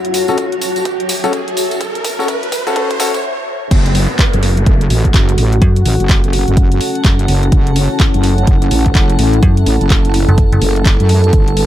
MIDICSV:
0, 0, Header, 1, 9, 480
1, 0, Start_track
1, 0, Tempo, 476190
1, 1821, Time_signature, 4, 2, 24, 8
1, 11753, End_track
2, 0, Start_track
2, 0, Title_t, "Ambient pad"
2, 0, Program_c, 0, 92
2, 0, Note_on_c, 0, 66, 89
2, 0, Note_on_c, 0, 73, 88
2, 0, Note_on_c, 0, 78, 85
2, 0, Note_on_c, 0, 81, 83
2, 355, Note_on_c, 0, 76, 89
2, 519, Note_off_c, 0, 78, 0
2, 3260, Note_off_c, 0, 81, 0
2, 3261, Note_off_c, 0, 73, 0
2, 3261, Note_off_c, 0, 76, 0
2, 3262, Note_off_c, 0, 66, 0
2, 4058, Note_on_c, 0, 78, 77
2, 5087, Note_on_c, 0, 81, 91
2, 11423, Note_on_c, 0, 67, 87
2, 11753, Note_off_c, 0, 67, 0
2, 11753, Note_off_c, 0, 78, 0
2, 11753, Note_off_c, 0, 81, 0
2, 11753, End_track
3, 0, Start_track
3, 0, Title_t, "Analog synth pad"
3, 0, Program_c, 1, 89
3, 0, Note_on_c, 1, 54, 82
3, 0, Note_on_c, 1, 66, 77
3, 0, Note_on_c, 1, 69, 75
3, 0, Note_on_c, 1, 73, 94
3, 3221, Note_off_c, 1, 66, 0
3, 3221, Note_off_c, 1, 69, 0
3, 3221, Note_off_c, 1, 73, 0
3, 3222, Note_off_c, 1, 54, 0
3, 3741, Note_on_c, 1, 66, 76
3, 3742, Note_on_c, 1, 61, 85
3, 3742, Note_on_c, 1, 69, 97
3, 7543, Note_off_c, 1, 66, 0
3, 7581, Note_on_c, 1, 64, 81
3, 11381, Note_off_c, 1, 61, 0
3, 11383, Note_off_c, 1, 64, 0
3, 11420, Note_on_c, 1, 71, 94
3, 11421, Note_on_c, 1, 55, 84
3, 11421, Note_on_c, 1, 62, 80
3, 11753, Note_off_c, 1, 55, 0
3, 11753, Note_off_c, 1, 62, 0
3, 11753, Note_off_c, 1, 69, 0
3, 11753, Note_off_c, 1, 71, 0
3, 11753, End_track
4, 0, Start_track
4, 0, Title_t, "Grand piano"
4, 0, Program_c, 2, 0
4, 289, Note_on_c, 2, 61, 82
4, 289, Note_on_c, 2, 66, 78
4, 289, Note_on_c, 2, 69, 91
4, 356, Note_off_c, 2, 61, 0
4, 356, Note_off_c, 2, 66, 0
4, 356, Note_off_c, 2, 69, 0
4, 1249, Note_on_c, 2, 61, 89
4, 1249, Note_on_c, 2, 66, 81
4, 1249, Note_on_c, 2, 69, 96
4, 1316, Note_off_c, 2, 61, 0
4, 1316, Note_off_c, 2, 66, 0
4, 1316, Note_off_c, 2, 69, 0
4, 2209, Note_on_c, 2, 61, 92
4, 2209, Note_on_c, 2, 66, 81
4, 2209, Note_on_c, 2, 69, 99
4, 2276, Note_off_c, 2, 61, 0
4, 2276, Note_off_c, 2, 66, 0
4, 2276, Note_off_c, 2, 69, 0
4, 2689, Note_on_c, 2, 61, 93
4, 2689, Note_on_c, 2, 66, 87
4, 2689, Note_on_c, 2, 69, 103
4, 2756, Note_off_c, 2, 61, 0
4, 2756, Note_off_c, 2, 66, 0
4, 2756, Note_off_c, 2, 69, 0
4, 2780, Note_on_c, 2, 61, 98
4, 2780, Note_on_c, 2, 66, 90
4, 2780, Note_on_c, 2, 69, 109
4, 2888, Note_off_c, 2, 61, 0
4, 2888, Note_off_c, 2, 66, 0
4, 2888, Note_off_c, 2, 69, 0
4, 3020, Note_on_c, 2, 61, 97
4, 3020, Note_on_c, 2, 66, 85
4, 3020, Note_on_c, 2, 69, 104
4, 3128, Note_off_c, 2, 61, 0
4, 3128, Note_off_c, 2, 66, 0
4, 3128, Note_off_c, 2, 69, 0
4, 11753, End_track
5, 0, Start_track
5, 0, Title_t, "FM bass"
5, 0, Program_c, 3, 39
5, 5662, Note_on_c, 3, 42, 94
5, 5887, Note_off_c, 3, 42, 0
5, 9502, Note_on_c, 3, 42, 95
5, 9727, Note_off_c, 3, 42, 0
5, 10368, Note_on_c, 3, 30, 96
5, 10585, Note_off_c, 3, 30, 0
5, 10610, Note_on_c, 3, 30, 102
5, 10687, Note_off_c, 3, 30, 0
5, 11753, End_track
6, 0, Start_track
6, 0, Title_t, "Wobble bass"
6, 0, Program_c, 4, 39
6, 3742, Note_on_c, 4, 30, 96
6, 4106, Note_off_c, 4, 30, 0
6, 4370, Note_on_c, 4, 30, 97
6, 4687, Note_off_c, 4, 30, 0
6, 4702, Note_on_c, 4, 30, 95
6, 4927, Note_off_c, 4, 30, 0
6, 4942, Note_on_c, 4, 33, 101
6, 5167, Note_off_c, 4, 33, 0
6, 5181, Note_on_c, 4, 30, 97
6, 5407, Note_off_c, 4, 30, 0
6, 5421, Note_on_c, 4, 33, 96
6, 5647, Note_off_c, 4, 33, 0
6, 5901, Note_on_c, 4, 33, 98
6, 6026, Note_off_c, 4, 33, 0
6, 6049, Note_on_c, 4, 30, 94
6, 6506, Note_off_c, 4, 30, 0
6, 6530, Note_on_c, 4, 30, 102
6, 6847, Note_off_c, 4, 30, 0
6, 7102, Note_on_c, 4, 30, 97
6, 7327, Note_off_c, 4, 30, 0
6, 7341, Note_on_c, 4, 30, 97
6, 7566, Note_off_c, 4, 30, 0
6, 7582, Note_on_c, 4, 30, 97
6, 7946, Note_off_c, 4, 30, 0
6, 8210, Note_on_c, 4, 30, 99
6, 8527, Note_off_c, 4, 30, 0
6, 8542, Note_on_c, 4, 30, 100
6, 8767, Note_off_c, 4, 30, 0
6, 8783, Note_on_c, 4, 33, 98
6, 9007, Note_off_c, 4, 33, 0
6, 9022, Note_on_c, 4, 30, 97
6, 9247, Note_off_c, 4, 30, 0
6, 9262, Note_on_c, 4, 33, 95
6, 9487, Note_off_c, 4, 33, 0
6, 9742, Note_on_c, 4, 33, 97
6, 9866, Note_off_c, 4, 33, 0
6, 9889, Note_on_c, 4, 30, 92
6, 10345, Note_off_c, 4, 30, 0
6, 10701, Note_on_c, 4, 30, 97
6, 11065, Note_off_c, 4, 30, 0
6, 11090, Note_on_c, 4, 42, 97
6, 11407, Note_off_c, 4, 42, 0
6, 11421, Note_on_c, 4, 31, 100
6, 11753, Note_off_c, 4, 31, 0
6, 11753, End_track
7, 0, Start_track
7, 0, Title_t, "Downlifter"
7, 0, Program_c, 5, 103
7, 3741, Note_on_c, 5, 60, 78
7, 7581, Note_off_c, 5, 60, 0
7, 11753, End_track
8, 0, Start_track
8, 0, Title_t, "Riser"
8, 0, Program_c, 6, 103
8, 0, Note_on_c, 6, 60, 77
8, 3261, Note_off_c, 6, 60, 0
8, 11753, End_track
9, 0, Start_track
9, 0, Title_t, "Drums"
9, 48, Note_on_c, 9, 42, 51
9, 140, Note_on_c, 9, 46, 108
9, 145, Note_on_c, 9, 54, 91
9, 148, Note_off_c, 9, 42, 0
9, 241, Note_off_c, 9, 46, 0
9, 246, Note_off_c, 9, 54, 0
9, 284, Note_on_c, 9, 54, 51
9, 377, Note_off_c, 9, 54, 0
9, 377, Note_on_c, 9, 54, 44
9, 380, Note_on_c, 9, 42, 77
9, 381, Note_on_c, 9, 36, 106
9, 477, Note_off_c, 9, 54, 0
9, 481, Note_off_c, 9, 42, 0
9, 482, Note_off_c, 9, 36, 0
9, 528, Note_on_c, 9, 42, 47
9, 620, Note_on_c, 9, 46, 95
9, 621, Note_on_c, 9, 54, 94
9, 629, Note_off_c, 9, 42, 0
9, 721, Note_off_c, 9, 46, 0
9, 722, Note_off_c, 9, 54, 0
9, 765, Note_on_c, 9, 54, 54
9, 767, Note_on_c, 9, 42, 36
9, 859, Note_off_c, 9, 54, 0
9, 859, Note_on_c, 9, 54, 40
9, 860, Note_off_c, 9, 42, 0
9, 860, Note_on_c, 9, 42, 74
9, 861, Note_on_c, 9, 36, 104
9, 960, Note_off_c, 9, 54, 0
9, 961, Note_off_c, 9, 42, 0
9, 962, Note_off_c, 9, 36, 0
9, 1008, Note_on_c, 9, 42, 51
9, 1098, Note_on_c, 9, 54, 95
9, 1100, Note_on_c, 9, 46, 109
9, 1109, Note_off_c, 9, 42, 0
9, 1199, Note_off_c, 9, 54, 0
9, 1201, Note_off_c, 9, 46, 0
9, 1249, Note_on_c, 9, 42, 35
9, 1249, Note_on_c, 9, 54, 56
9, 1338, Note_off_c, 9, 54, 0
9, 1338, Note_on_c, 9, 54, 39
9, 1341, Note_off_c, 9, 42, 0
9, 1341, Note_on_c, 9, 36, 107
9, 1341, Note_on_c, 9, 42, 76
9, 1439, Note_off_c, 9, 54, 0
9, 1442, Note_off_c, 9, 36, 0
9, 1442, Note_off_c, 9, 42, 0
9, 1490, Note_on_c, 9, 42, 51
9, 1581, Note_on_c, 9, 46, 94
9, 1588, Note_on_c, 9, 54, 98
9, 1590, Note_off_c, 9, 42, 0
9, 1682, Note_off_c, 9, 46, 0
9, 1689, Note_off_c, 9, 54, 0
9, 1724, Note_on_c, 9, 54, 51
9, 1729, Note_on_c, 9, 42, 37
9, 1821, Note_off_c, 9, 42, 0
9, 1821, Note_on_c, 9, 36, 101
9, 1821, Note_on_c, 9, 42, 77
9, 1824, Note_off_c, 9, 54, 0
9, 1824, Note_on_c, 9, 54, 43
9, 1922, Note_off_c, 9, 36, 0
9, 1922, Note_off_c, 9, 42, 0
9, 1925, Note_off_c, 9, 54, 0
9, 1969, Note_on_c, 9, 42, 49
9, 2061, Note_on_c, 9, 36, 102
9, 2061, Note_on_c, 9, 46, 110
9, 2061, Note_on_c, 9, 54, 98
9, 2070, Note_off_c, 9, 42, 0
9, 2162, Note_off_c, 9, 36, 0
9, 2162, Note_off_c, 9, 46, 0
9, 2162, Note_off_c, 9, 54, 0
9, 2217, Note_on_c, 9, 54, 51
9, 2301, Note_on_c, 9, 36, 107
9, 2302, Note_off_c, 9, 54, 0
9, 2302, Note_on_c, 9, 42, 76
9, 2302, Note_on_c, 9, 54, 42
9, 2402, Note_off_c, 9, 36, 0
9, 2403, Note_off_c, 9, 42, 0
9, 2403, Note_off_c, 9, 54, 0
9, 2450, Note_on_c, 9, 42, 50
9, 2541, Note_on_c, 9, 36, 104
9, 2541, Note_on_c, 9, 54, 91
9, 2542, Note_on_c, 9, 46, 96
9, 2551, Note_off_c, 9, 42, 0
9, 2642, Note_off_c, 9, 36, 0
9, 2642, Note_off_c, 9, 46, 0
9, 2642, Note_off_c, 9, 54, 0
9, 2690, Note_on_c, 9, 42, 35
9, 2693, Note_on_c, 9, 54, 59
9, 2781, Note_off_c, 9, 54, 0
9, 2781, Note_on_c, 9, 36, 104
9, 2781, Note_on_c, 9, 54, 41
9, 2782, Note_off_c, 9, 42, 0
9, 2782, Note_on_c, 9, 42, 75
9, 2882, Note_off_c, 9, 36, 0
9, 2882, Note_off_c, 9, 42, 0
9, 2882, Note_off_c, 9, 54, 0
9, 2929, Note_on_c, 9, 36, 90
9, 2930, Note_on_c, 9, 42, 51
9, 3021, Note_off_c, 9, 36, 0
9, 3021, Note_on_c, 9, 36, 106
9, 3021, Note_on_c, 9, 46, 109
9, 3024, Note_on_c, 9, 54, 103
9, 3030, Note_off_c, 9, 42, 0
9, 3122, Note_off_c, 9, 36, 0
9, 3122, Note_off_c, 9, 46, 0
9, 3125, Note_off_c, 9, 54, 0
9, 3169, Note_on_c, 9, 36, 93
9, 3169, Note_on_c, 9, 42, 35
9, 3172, Note_on_c, 9, 54, 49
9, 3270, Note_off_c, 9, 36, 0
9, 3270, Note_off_c, 9, 42, 0
9, 3273, Note_off_c, 9, 54, 0
9, 3742, Note_on_c, 9, 36, 122
9, 3742, Note_on_c, 9, 42, 83
9, 3742, Note_on_c, 9, 49, 108
9, 3842, Note_off_c, 9, 42, 0
9, 3842, Note_off_c, 9, 49, 0
9, 3843, Note_off_c, 9, 36, 0
9, 3890, Note_on_c, 9, 42, 54
9, 3981, Note_on_c, 9, 46, 107
9, 3990, Note_off_c, 9, 42, 0
9, 4082, Note_off_c, 9, 46, 0
9, 4221, Note_on_c, 9, 42, 84
9, 4222, Note_on_c, 9, 36, 122
9, 4224, Note_on_c, 9, 39, 127
9, 4322, Note_off_c, 9, 42, 0
9, 4323, Note_off_c, 9, 36, 0
9, 4325, Note_off_c, 9, 39, 0
9, 4370, Note_on_c, 9, 42, 54
9, 4462, Note_on_c, 9, 46, 91
9, 4470, Note_off_c, 9, 42, 0
9, 4563, Note_off_c, 9, 46, 0
9, 4610, Note_on_c, 9, 42, 39
9, 4701, Note_off_c, 9, 42, 0
9, 4701, Note_on_c, 9, 42, 83
9, 4702, Note_on_c, 9, 36, 119
9, 4802, Note_off_c, 9, 42, 0
9, 4803, Note_off_c, 9, 36, 0
9, 4850, Note_on_c, 9, 42, 55
9, 4942, Note_on_c, 9, 46, 104
9, 4951, Note_off_c, 9, 42, 0
9, 5042, Note_off_c, 9, 46, 0
9, 5090, Note_on_c, 9, 36, 62
9, 5090, Note_on_c, 9, 42, 39
9, 5182, Note_off_c, 9, 36, 0
9, 5182, Note_off_c, 9, 42, 0
9, 5182, Note_on_c, 9, 36, 123
9, 5182, Note_on_c, 9, 42, 84
9, 5184, Note_on_c, 9, 39, 127
9, 5283, Note_off_c, 9, 36, 0
9, 5283, Note_off_c, 9, 42, 0
9, 5285, Note_off_c, 9, 39, 0
9, 5330, Note_on_c, 9, 42, 55
9, 5421, Note_on_c, 9, 46, 91
9, 5431, Note_off_c, 9, 42, 0
9, 5522, Note_off_c, 9, 46, 0
9, 5570, Note_on_c, 9, 42, 40
9, 5661, Note_off_c, 9, 42, 0
9, 5661, Note_on_c, 9, 42, 84
9, 5662, Note_on_c, 9, 36, 123
9, 5762, Note_off_c, 9, 42, 0
9, 5763, Note_off_c, 9, 36, 0
9, 5810, Note_on_c, 9, 42, 53
9, 5902, Note_on_c, 9, 46, 110
9, 5911, Note_off_c, 9, 42, 0
9, 6003, Note_off_c, 9, 46, 0
9, 6050, Note_on_c, 9, 42, 38
9, 6141, Note_off_c, 9, 42, 0
9, 6141, Note_on_c, 9, 42, 82
9, 6142, Note_on_c, 9, 36, 127
9, 6144, Note_on_c, 9, 39, 127
9, 6242, Note_off_c, 9, 42, 0
9, 6243, Note_off_c, 9, 36, 0
9, 6245, Note_off_c, 9, 39, 0
9, 6289, Note_on_c, 9, 42, 52
9, 6381, Note_on_c, 9, 46, 97
9, 6390, Note_off_c, 9, 42, 0
9, 6482, Note_off_c, 9, 46, 0
9, 6530, Note_on_c, 9, 42, 38
9, 6622, Note_off_c, 9, 42, 0
9, 6622, Note_on_c, 9, 36, 126
9, 6622, Note_on_c, 9, 42, 78
9, 6723, Note_off_c, 9, 36, 0
9, 6723, Note_off_c, 9, 42, 0
9, 6770, Note_on_c, 9, 42, 54
9, 6861, Note_on_c, 9, 46, 110
9, 6871, Note_off_c, 9, 42, 0
9, 6962, Note_off_c, 9, 46, 0
9, 7009, Note_on_c, 9, 42, 37
9, 7101, Note_off_c, 9, 42, 0
9, 7101, Note_on_c, 9, 42, 83
9, 7102, Note_on_c, 9, 36, 126
9, 7104, Note_on_c, 9, 39, 127
9, 7202, Note_off_c, 9, 42, 0
9, 7203, Note_off_c, 9, 36, 0
9, 7205, Note_off_c, 9, 39, 0
9, 7250, Note_on_c, 9, 42, 54
9, 7341, Note_on_c, 9, 46, 94
9, 7351, Note_off_c, 9, 42, 0
9, 7442, Note_off_c, 9, 46, 0
9, 7489, Note_on_c, 9, 42, 38
9, 7581, Note_off_c, 9, 42, 0
9, 7581, Note_on_c, 9, 42, 81
9, 7582, Note_on_c, 9, 36, 124
9, 7682, Note_off_c, 9, 36, 0
9, 7682, Note_off_c, 9, 42, 0
9, 7729, Note_on_c, 9, 42, 51
9, 7821, Note_on_c, 9, 46, 116
9, 7830, Note_off_c, 9, 42, 0
9, 7921, Note_off_c, 9, 46, 0
9, 8060, Note_on_c, 9, 42, 77
9, 8062, Note_on_c, 9, 36, 127
9, 8063, Note_on_c, 9, 39, 127
9, 8161, Note_off_c, 9, 42, 0
9, 8162, Note_off_c, 9, 36, 0
9, 8164, Note_off_c, 9, 39, 0
9, 8208, Note_on_c, 9, 42, 50
9, 8301, Note_on_c, 9, 46, 97
9, 8309, Note_off_c, 9, 42, 0
9, 8402, Note_off_c, 9, 46, 0
9, 8449, Note_on_c, 9, 42, 36
9, 8540, Note_off_c, 9, 42, 0
9, 8540, Note_on_c, 9, 42, 75
9, 8542, Note_on_c, 9, 36, 126
9, 8641, Note_off_c, 9, 42, 0
9, 8643, Note_off_c, 9, 36, 0
9, 8688, Note_on_c, 9, 42, 53
9, 8780, Note_on_c, 9, 46, 114
9, 8789, Note_off_c, 9, 42, 0
9, 8881, Note_off_c, 9, 46, 0
9, 8929, Note_on_c, 9, 42, 36
9, 8930, Note_on_c, 9, 36, 67
9, 9021, Note_off_c, 9, 42, 0
9, 9021, Note_on_c, 9, 42, 79
9, 9022, Note_off_c, 9, 36, 0
9, 9022, Note_on_c, 9, 36, 127
9, 9024, Note_on_c, 9, 39, 125
9, 9122, Note_off_c, 9, 42, 0
9, 9123, Note_off_c, 9, 36, 0
9, 9124, Note_off_c, 9, 39, 0
9, 9169, Note_on_c, 9, 42, 53
9, 9261, Note_on_c, 9, 46, 94
9, 9269, Note_off_c, 9, 42, 0
9, 9361, Note_off_c, 9, 46, 0
9, 9409, Note_on_c, 9, 42, 37
9, 9502, Note_off_c, 9, 42, 0
9, 9502, Note_on_c, 9, 36, 123
9, 9502, Note_on_c, 9, 42, 78
9, 9602, Note_off_c, 9, 42, 0
9, 9603, Note_off_c, 9, 36, 0
9, 9649, Note_on_c, 9, 42, 49
9, 9742, Note_on_c, 9, 46, 110
9, 9750, Note_off_c, 9, 42, 0
9, 9843, Note_off_c, 9, 46, 0
9, 9890, Note_on_c, 9, 42, 36
9, 9981, Note_off_c, 9, 42, 0
9, 9981, Note_on_c, 9, 42, 78
9, 9982, Note_on_c, 9, 36, 127
9, 9984, Note_on_c, 9, 39, 123
9, 10082, Note_off_c, 9, 42, 0
9, 10083, Note_off_c, 9, 36, 0
9, 10085, Note_off_c, 9, 39, 0
9, 10129, Note_on_c, 9, 42, 50
9, 10221, Note_on_c, 9, 46, 95
9, 10230, Note_off_c, 9, 42, 0
9, 10322, Note_off_c, 9, 46, 0
9, 10369, Note_on_c, 9, 42, 35
9, 10461, Note_off_c, 9, 42, 0
9, 10461, Note_on_c, 9, 42, 76
9, 10462, Note_on_c, 9, 36, 122
9, 10562, Note_off_c, 9, 42, 0
9, 10563, Note_off_c, 9, 36, 0
9, 10609, Note_on_c, 9, 42, 52
9, 10701, Note_on_c, 9, 46, 107
9, 10710, Note_off_c, 9, 42, 0
9, 10802, Note_off_c, 9, 46, 0
9, 10849, Note_on_c, 9, 42, 35
9, 10941, Note_off_c, 9, 42, 0
9, 10941, Note_on_c, 9, 42, 77
9, 10942, Note_on_c, 9, 36, 125
9, 10944, Note_on_c, 9, 39, 122
9, 11042, Note_off_c, 9, 42, 0
9, 11043, Note_off_c, 9, 36, 0
9, 11044, Note_off_c, 9, 39, 0
9, 11088, Note_on_c, 9, 42, 52
9, 11180, Note_on_c, 9, 46, 97
9, 11189, Note_off_c, 9, 42, 0
9, 11281, Note_off_c, 9, 46, 0
9, 11329, Note_on_c, 9, 42, 36
9, 11420, Note_off_c, 9, 42, 0
9, 11420, Note_on_c, 9, 42, 79
9, 11421, Note_on_c, 9, 36, 119
9, 11521, Note_off_c, 9, 42, 0
9, 11522, Note_off_c, 9, 36, 0
9, 11568, Note_on_c, 9, 42, 50
9, 11660, Note_on_c, 9, 46, 107
9, 11669, Note_off_c, 9, 42, 0
9, 11753, Note_off_c, 9, 46, 0
9, 11753, End_track
0, 0, End_of_file